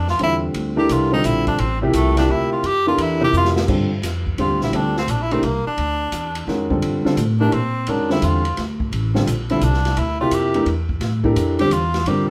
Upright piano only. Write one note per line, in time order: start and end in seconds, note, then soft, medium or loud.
0.19 0.73 D3 medium
0.19 0.73 G3 soft
0.19 0.74 C4 soft
0.19 0.74 F4 medium
0.19 0.74 A4 medium
0.76 1.10 E3 medium
0.76 1.10 D4 medium
0.76 1.10 G4 medium
0.76 1.10 A4 medium
0.76 1.10 A#4 medium
1.12 1.57 D3 medium
1.12 1.57 G3 medium
1.12 1.57 C4 medium
1.12 1.57 F4 medium
1.12 1.57 A4 medium
1.82 2.15 C3 medium
1.82 2.15 F3 medium
1.82 2.15 A#3 medium
1.82 2.15 E4 medium
1.82 2.15 G4 medium
2.16 2.61 C3 medium
2.16 2.62 F3 medium
2.16 2.62 A#3 medium
2.16 2.62 E4 medium
2.16 2.62 G4 medium
2.86 3.19 E3 medium
2.86 3.20 D4 medium
2.86 3.20 G4 medium
2.86 3.20 A4 medium
2.86 3.20 A#4 medium
3.20 3.66 C3 medium
3.20 3.66 F3 medium
3.20 3.66 A#3 medium
3.20 3.66 E4 medium
3.20 3.66 G4 medium
3.69 3.89 D3 medium
3.69 3.89 G3 medium
3.69 3.90 C4 medium
3.69 3.90 F4 medium
3.69 3.90 A4 medium
4.39 4.72 D3 medium
4.39 4.73 G3 medium
4.39 4.72 C4 medium
4.39 4.72 F4 medium
4.39 4.93 G4 medium
4.73 4.94 D3 medium
4.73 4.94 G3 medium
4.73 4.94 C4 medium
4.73 4.94 F4 medium
4.73 4.95 A4 medium
5.32 5.42 E3 medium
5.32 5.43 A3 medium
5.32 5.42 D4 medium
5.32 5.43 G4 medium
5.32 5.43 A#4 medium
6.48 6.69 D#3 medium
6.48 6.69 G#3 medium
6.48 6.69 C#4 medium
6.48 6.69 F#4 medium
6.48 6.69 A#4 medium
6.70 7.01 D3 medium
6.70 7.01 G3 medium
6.70 7.01 C4 medium
6.70 7.01 F4 medium
6.70 7.02 A4 medium
7.05 7.16 D3 medium
7.05 7.17 G3 medium
7.05 7.17 C4 medium
7.05 7.17 F4 medium
7.05 7.17 A4 medium
7.40 7.51 E3 medium
7.40 7.51 A3 medium
7.40 7.52 D4 medium
7.40 7.52 G4 medium
7.40 7.52 A#4 medium
7.88 8.09 D#3 medium
7.88 8.09 G#3 medium
7.88 8.09 C#4 medium
7.88 8.09 F#4 medium
7.88 8.09 A#4 medium
8.10 8.41 D3 medium
8.10 8.41 G3 medium
8.10 8.41 C4 medium
8.10 8.41 F4 medium
8.10 8.41 A4 medium
9.14 9.26 D3 medium
9.14 9.26 G3 medium
9.14 9.26 C4 medium
9.14 9.26 F4 medium
9.14 9.26 A4 medium
9.50 9.61 D3 medium
9.50 9.61 G3 medium
9.50 9.61 C4 medium
9.50 9.62 F4 medium
9.50 9.62 A4 medium
10.21 10.53 C3 medium
10.21 10.53 F3 medium
10.21 10.53 A#3 medium
10.21 10.53 E4 medium
10.21 10.54 G4 medium
10.55 10.66 E3 medium
10.55 10.66 A3 medium
10.55 10.66 D4 medium
10.55 10.66 G4 medium
10.55 10.66 A#4 medium
11.23 11.57 E3 medium
11.23 11.57 D4 medium
11.23 11.58 G4 medium
11.23 11.57 A4 medium
11.23 11.58 A#4 medium
11.60 11.70 D3 medium
11.60 11.71 G3 medium
11.60 11.71 C4 medium
11.60 11.71 F4 medium
11.60 11.71 G4 medium
12.07 12.28 D3 medium
12.07 12.28 G3 medium
12.07 12.28 C4 medium
12.07 12.28 F4 medium
12.07 12.28 A#4 medium